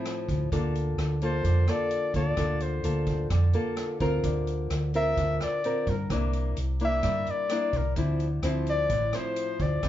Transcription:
Already playing: nylon-string guitar A2 F3 C4 E4
0.05 cross-stick, closed hi-hat
0.29 fingered electric bass D2, kick, closed hi-hat
0.52 fingered electric bass D2, nylon-string guitar D3 A#3 F4 A4, kick, closed hi-hat
0.75 closed hi-hat
0.98 fingered electric bass D2, cross-stick, closed hi-hat
1.22 nylon-string guitar A#3 F4 A4, flugelhorn C5, closed hi-hat
1.44 fingered electric bass F2, nylon-string guitar D3, kick, closed hi-hat
1.68 nylon-string guitar A#3 F4 A4, flugelhorn D5, cross-stick, closed hi-hat
1.91 closed hi-hat
2.14 fingered electric bass D2, nylon-string guitar A#3 F4 A4, flugelhorn D5, kick, closed hi-hat
2.37 fingered electric bass D2, nylon-string guitar D3 A#3 F4 A4, kick, cross-stick, closed hi-hat
2.60 flugelhorn C5, closed hi-hat
2.84 fingered electric bass D2, nylon-string guitar A#3 F4 A4, closed hi-hat
3.06 kick, closed hi-hat
3.30 fingered electric bass F2, nylon-string guitar D3, kick, cross-stick, closed hi-hat
3.53 nylon-string guitar A#3 F4 A4, closed hi-hat
3.77 cross-stick, closed hi-hat
4.00 fingered electric bass D2, nylon-string guitar C4 F4 A#4, kick, closed hi-hat
4.24 fingered electric bass D2, nylon-string guitar D3, kick, closed hi-hat
4.47 closed hi-hat
4.70 fingered electric bass D2, cross-stick, closed hi-hat
4.94 nylon-string guitar C4 F4 A#4, flugelhorn E5, closed hi-hat
5.17 fingered electric bass D2, nylon-string guitar D3, kick, closed hi-hat
5.41 flugelhorn D5, cross-stick, closed hi-hat
5.64 nylon-string guitar C4 F4 A#4, closed hi-hat
5.87 fingered electric bass G2, flugelhorn A#4, kick, closed hi-hat
6.10 fingered electric bass C2, nylon-string guitar C3 A#3 D4 E4, kick, cross-stick, closed hi-hat
6.33 closed hi-hat
6.57 fingered electric bass C2, closed hi-hat
6.80 nylon-string guitar A#3 D4 E4, closed hi-hat
6.85 flugelhorn E5
7.03 fingered electric bass G2, nylon-string guitar G3, kick, cross-stick, closed hi-hat
7.27 closed hi-hat
7.31 flugelhorn D5
7.49 nylon-string guitar A#3 D4 E4, cross-stick, closed hi-hat
7.73 fingered electric bass C2, kick, closed hi-hat
7.77 flugelhorn A#4
7.96 fingered electric bass D2, nylon-string guitar D3 F3 C4 E4, kick, closed hi-hat
8.20 closed hi-hat
8.43 fingered electric bass D2, nylon-string guitar F3 C4 E4, cross-stick, closed hi-hat
8.66 flugelhorn D5, closed hi-hat
8.90 fingered electric bass A1, nylon-string guitar A2, kick, closed hi-hat
9.13 nylon-string guitar F3 C4 E4, flugelhorn C5, cross-stick, closed hi-hat
9.36 closed hi-hat
9.60 fingered electric bass D2, flugelhorn D5, kick, closed hi-hat
9.83 fingered electric bass D2, nylon-string guitar D3 F3 C4 E4, kick, cross-stick, closed hi-hat

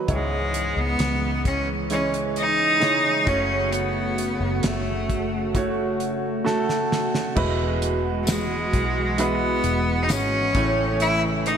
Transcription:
Already playing: grand piano F#3 D#4 G#4 B4
0.08 fingered electric bass C#2, grand piano G#2 G#3 E4 C#5, analog synth pad C#3 E3 G#3, kick, closed hi-hat
0.12 cello G#3
0.54 closed hi-hat
0.77 fingered electric bass C#2, cello B3
0.99 fingered electric bass C#2, snare, closed hi-hat
1.45 cello C#4, kick, closed hi-hat
1.90 grand piano E3 G#3 C#5, cello C#4, closed hi-hat
2.14 closed hi-hat
2.36 cello D#4, closed hi-hat
2.80 grand piano E3 G#3 C#5, snare, closed hi-hat
3.26 fingered electric bass F#1, grand piano C#3 A3 F#4 C#5, analog synth pad A3 F#4, cello C#4, kick, closed hi-hat
3.72 cello B3, closed hi-hat
4.18 closed hi-hat
4.40 fingered electric bass F#1
4.63 fingered electric bass F#1, cello A3, snare, closed hi-hat
5.10 kick, closed hi-hat
5.55 grand piano A3 F#4 C#5, kick, closed hi-hat
6.00 closed hi-hat
6.44 grand piano A3 F#4 A4, snare
6.69 snare
6.92 snare
7.15 snare
7.36 fingered electric bass E1, grand piano B2 G#3 E4 F#4 B4, analog synth pad E3 G#3 F#4, kick, crash
7.82 closed hi-hat
8.23 cello A3, tambourine
8.27 cello G#3, snare, closed hi-hat
8.73 fingered electric bass B1, kick, closed hi-hat
9.18 grand piano G#3 E4 F#4 B4, cello B3, closed hi-hat
9.64 fingered electric bass E1, closed hi-hat
10.03 cello D#4
10.09 fingered electric bass G#1, cello C#4, snare, closed hi-hat, tambourine
10.55 fingered electric bass A1, grand piano A2 E3 A3 C#4 C#5, analog synth pad C#3 E3 A3, kick, snare, closed hi-hat
11.00 cello E4, closed hi-hat
11.46 cello D#4, closed hi-hat

